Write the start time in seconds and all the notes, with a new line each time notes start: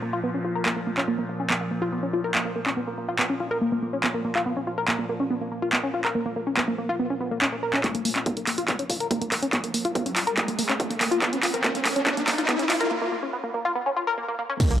Already playing: A#2 F3
0.02 A#3
0.13 F4
0.24 B3
0.34 C#4
0.45 F4
0.55 A#4
0.66 A#3, clap
0.76 A#3
0.87 A#3
0.98 C#4, clap
1.08 A#3
1.19 A#3
1.29 A#3
1.40 C#4
1.50 B3, clap
1.61 A#3
1.71 A#3
1.82 F4
1.92 B3
2.03 C#4
2.13 F4
2.24 A#4
2.35 A#3, clap
2.45 A#3
2.56 A#3
2.66 C#4, clap
2.77 B3
2.87 A#3
2.98 A#3
3.09 F4
3.19 B3, clap
3.30 C#4
3.40 F4
3.51 A#4
3.62 A#3
3.72 A#3
3.83 A#3
3.93 C#4
4.04 B3, clap
4.14 A#3
4.25 A#3
4.35 F4, clap
4.46 B3
4.57 C#4
4.67 F4
4.78 A#4
4.88 A#3, clap
4.99 A#3
5.09 A#3
5.20 C#4
5.30 B3
5.41 A#3
5.52 A#3
5.62 F4
5.73 B3, clap
5.83 C#4
5.94 F4
6.05 A#4, clap
6.15 A#3
6.26 A#3
6.36 A#3
6.47 C#4
6.57 B3, clap
6.68 A#3
6.78 A#3
6.89 F4
6.99 B3
7.10 C#4
7.21 B3
7.31 A#3
7.42 C#4, clap
7.52 A#3
7.63 A#4
7.74 C#4, clap
7.84 A#3, kick, clap, closed hi-hat, riser
7.95 A#3, closed hi-hat
8.05 A#3, open hi-hat
8.16 C#4, clap, closed hi-hat
8.26 B3, kick, closed hi-hat
8.37 A#3, closed hi-hat
8.47 A#3, clap, open hi-hat
8.58 F4, closed hi-hat
8.68 B3, kick, clap, closed hi-hat
8.79 C#4, closed hi-hat
8.90 F4, kick, open hi-hat
9.00 A#4, closed hi-hat
9.11 A#3, kick, closed hi-hat
9.21 A#3, closed hi-hat
9.32 A#3, clap, open hi-hat
9.43 C#4, closed hi-hat
9.53 B3, kick, clap, closed hi-hat
9.64 A#3, closed hi-hat
9.74 A#3, open hi-hat
9.85 F4, closed hi-hat
9.95 B3, kick, closed hi-hat
10.06 C#4, closed hi-hat
10.16 F4, clap, open hi-hat
10.27 A#4, closed hi-hat
10.37 A#3, kick, clap, closed hi-hat
10.48 A#3, closed hi-hat
10.59 A#3, open hi-hat
10.69 C#4, clap, closed hi-hat
10.79 B3, kick, closed hi-hat
10.90 A#3, closed hi-hat
11.01 A#3, clap, open hi-hat
11.11 F4, closed hi-hat
11.22 B3, kick, clap, closed hi-hat
11.32 C#4, closed hi-hat
11.43 F4, clap, open hi-hat
11.54 A#4, closed hi-hat
11.64 A#3, kick, clap, closed hi-hat
11.75 A#3, closed hi-hat
11.85 A#3, clap, open hi-hat
11.96 C#4, closed hi-hat
12.07 B3, kick, clap, closed hi-hat
12.17 A#3, closed hi-hat
12.28 A#3, kick, clap, open hi-hat
12.38 F4, closed hi-hat
12.49 B3, kick, clap, closed hi-hat
12.59 C#4, closed hi-hat
12.70 F4, clap, open hi-hat
12.81 A#4, closed hi-hat
12.91 A#3
13.02 A#3
13.12 A#3
13.23 C#4
13.33 B3
13.44 A#3
13.54 A#3
13.65 F4
13.75 B3
13.86 C#4
13.96 F4
14.07 A#4
14.18 A#3
14.28 A#3
14.39 A#3
14.50 C#4
14.60 A#3, kick, closed hi-hat, crash, ride, tambourine, impact
14.71 A#3, closed hi-hat